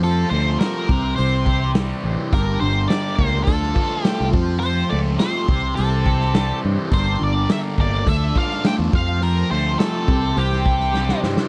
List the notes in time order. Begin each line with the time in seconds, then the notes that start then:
Already playing: F2 F3 A3 C4 G4 C5
0.03 F3 A4, open hi-hat
0.30 D2 A3 C5
0.59 F3 A#4, snare, open hi-hat
0.89 C2 C3 E3 G3, kick
1.16 C2 C4 C5, open hi-hat
1.45 G4, kick
1.75 G3, snare, open hi-hat
2.03 A1 E3
2.32 G1 G2 D3 A#3 A#4, kick, open hi-hat
2.60 G1 D3 C5
2.88 G3 D5, snare, open hi-hat
3.15 C#2 A#3 C5, kick
3.44 D2 D3 F3 A3 F4 A4, kick, open hi-hat
3.62 snare
3.74 F4, kick
4.03 A3 G4, snare, open hi-hat
4.20 C2
4.32 F2 F3 C4 G4 C5, kick
4.60 F3 C5, open hi-hat
4.90 C#2 A3 D5
5.18 F3 C5, snare, open hi-hat
5.47 C2 C3 E3 G3 C4, kick
5.75 C2 C4 A4, open hi-hat
6.06 G4, kick
6.21 snare
6.34 G3, snare, open hi-hat
6.62 G2 E3
6.91 G1 G2 A#3 D4 A#4 C5 D5, kick, open hi-hat
7.19 G1 D3 D5
7.48 G3 E5, snare, open hi-hat
7.78 G1 A#3 D5, kick
8.06 D2 D3 F3 A3 A4 E5, kick, open hi-hat
8.36 F4 F5, kick
8.51 snare
8.64 A3 G5, snare, open hi-hat
8.79 E2
8.93 F2 F3 C4 G4 C5 F5, kick
9.22 F3 A#4, open hi-hat
9.51 D2 A3 C5
9.78 F3 A4, snare, open hi-hat
10.07 C2 C3 E3 G3, kick
10.37 C2 C4 G4, open hi-hat
10.52 snare
10.65 G4, kick
10.80 snare
10.94 G3, snare
11.09 snare
11.23 G2 E3, snare
11.37 snare